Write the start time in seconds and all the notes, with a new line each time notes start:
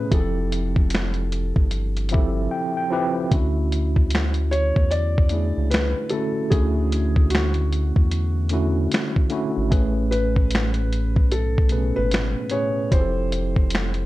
Already playing: A2 B2 A3 B3 C#4 G#4 B4
0.11 F1 F3 C4 E4 G4 G#4 A4, kick, closed hi-hat
0.20 A4
0.52 closed hi-hat
0.76 kick
0.90 closed hi-hat
0.95 finger snap, snare
1.14 closed hi-hat
1.32 closed hi-hat
1.56 G1, kick
1.71 closed hi-hat
1.97 closed hi-hat
2.09 F3 C4 E4 E5, closed hi-hat
2.13 G4 A4, kick
2.51 G5
2.77 G5
2.90 F3 C4 E4 G4 B4
3.31 D2 D3 A3 C#4 E4 F#4, kick, closed hi-hat
3.72 closed hi-hat
3.96 kick
4.10 closed hi-hat
4.15 finger snap, snare
4.34 closed hi-hat
4.51 C#5, closed hi-hat
4.76 E2, kick
4.91 D5, closed hi-hat
5.18 kick
5.29 A3 D4 E4, closed hi-hat
5.33 G#4
5.57 C#2
5.71 B4, snare, closed hi-hat
5.75 finger snap
6.09 D3 A3 C#4 A4, closed hi-hat
6.13 E4 F#4
6.50 D2 D3 A3 C#4 E4 F#4 G#4, kick, closed hi-hat
6.92 closed hi-hat
7.16 kick
7.30 F#4, closed hi-hat
7.35 finger snap, snare
7.54 closed hi-hat
7.73 closed hi-hat
7.96 E2, kick
8.11 closed hi-hat
8.49 D3 A3 C#4 E4, closed hi-hat
8.53 F#4
8.92 finger snap, snare, closed hi-hat
9.16 kick
9.30 D3 A3 C#4 E4 F#4, closed hi-hat
9.57 G#1
9.69 A1 A2 A3 C#4 G#4 B4, kick, closed hi-hat
10.11 B4, closed hi-hat
10.36 kick
10.51 closed hi-hat
10.55 finger snap, snare
10.74 closed hi-hat
10.93 closed hi-hat
11.16 B1, kick
11.32 A4, closed hi-hat
11.58 kick
11.69 B2 A3 B3 G#4 B4, closed hi-hat
11.78 C#4
11.96 G#1 B4
12.11 finger snap, snare, closed hi-hat
12.50 A2 A3 C#4 G#4 B4 C#5, closed hi-hat
12.91 F1 F3 C4 E4 G4 G#4 C5, kick, closed hi-hat
13.00 A4
13.32 closed hi-hat
13.56 kick
13.70 closed hi-hat
13.75 finger snap, snare
13.94 closed hi-hat